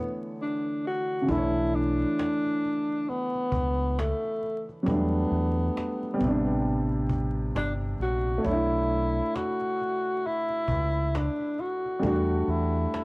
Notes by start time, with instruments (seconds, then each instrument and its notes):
Already playing: upright piano D3 E3 A3 C#5, tenor saxophone B3
0.42 tenor saxophone D4
0.87 tenor saxophone F#4
1.21 upright piano C#3
1.26 fingered electric bass B1, upright piano E3 D4, cajon bass
1.31 upright piano A3, tenor saxophone E4
1.36 upright piano C#5
1.56 cajon slap
1.74 tenor saxophone D4, cajon slap
2.19 cajon slap
2.46 cajon slap
2.65 cajon slap
3.09 tenor saxophone B3, cajon slap
3.35 cajon slap
3.52 fingered electric bass C#2, cajon bass
3.99 tenor saxophone A3, cajon slap
4.24 cajon slap
4.43 cajon slap
4.69 cajon slap
4.83 fingered electric bass E2, upright piano F#3 G3, cajon bass
4.87 upright piano A3 D4, tenor saxophone B3
5.13 cajon slap
5.31 fingered electric bass E2, cajon slap
5.77 cajon slap
6.03 cajon slap
6.14 upright piano G3
6.18 fingered electric bass A1, upright piano B3, cajon bass
6.23 upright piano C3
6.27 upright piano D4
6.67 cajon slap
6.91 cajon slap
7.10 cajon bass
7.55 fingered electric bass G1, tenor saxophone D4, cajon slap
7.81 cajon slap
8.00 fingered electric bass A#1, tenor saxophone F#4, cajon slap
8.27 cajon slap
8.38 upright piano A3
8.43 fingered electric bass B1, tenor saxophone E4, upright piano C#5, cajon bass
8.48 upright piano D4
8.52 upright piano E4
8.72 cajon slap
8.90 cajon slap
9.35 tenor saxophone F#4, cajon slap
9.61 cajon slap
9.81 cajon slap
10.26 tenor saxophone E4, cajon slap
10.50 cajon slap
10.68 fingered electric bass C#2, cajon bass
11.15 tenor saxophone D4, cajon slap
11.40 cajon slap
11.59 tenor saxophone F#4, cajon slap
11.85 cajon slap
11.99 upright piano G3 A3, cajon bass
12.03 fingered electric bass E2, upright piano D4 F#4, tenor saxophone F#4
12.30 cajon slap
12.48 fingered electric bass E2, tenor saxophone E4, cajon slap
12.75 cajon slap
12.94 cajon slap